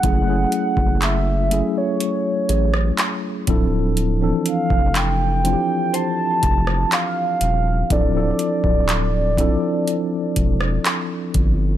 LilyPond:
<<
  \new Staff \with { instrumentName = "Soft synth lead" } { \time 4/4 \key d \lydian \tempo 4 = 61 fis''4 e''8. cis''4.~ cis''16 r8 | r8 f''8 g''4 a''4 f''4 | d''2. r4 | }
  \new Staff \with { instrumentName = "Synth pluck" } { \time 4/4 \key d \lydian fis'2 r8 gis'4. | r2 c''2~ | c''8 r2. r8 | }
  \new Staff \with { instrumentName = "Tine electric piano" } { \time 4/4 \key d \lydian <fis a cis' e' gis'>16 <fis a cis' e' gis'>4 r16 <fis a cis' e' gis'>4. r8 <f c' d' e' a'>8 | r16 <e f c' d' a'>4 r16 <f c' d' e' f' g'>4. r4 | <f c' d' e' a'>16 <f c' d' e' a'>4 r16 <f c' d' e' a'>4. r4 | }
  \new Staff \with { instrumentName = "Sub bass" } { \clef bass \time 4/4 \key d \lydian fis,,8 r16 fis,,4 r8. a,,8 r8 d,,8~ | d,,8 r16 f,,4 r8. f,,8 r8 dis,,8 | d,,8 r16 d,,4 r8. e,,8 r8 g,,8 | }
  \new DrumStaff \with { instrumentName = "Drums" } \drummode { \time 4/4 <hh bd>8 hh16 bd16 <hc hh>8 hh8 hh8 hh16 ss16 <hc hh>8 <hh bd>8 | hh8 hh16 bd16 <hc hh>8 hh8 hh8 <hh bd>16 ss16 <hc hh>8 hh8 | <hh bd>8 hh16 bd16 <hc hh>8 <hh bd>8 hh8 <hh bd>16 ss16 <hc hh>8 <hh bd>8 | }
>>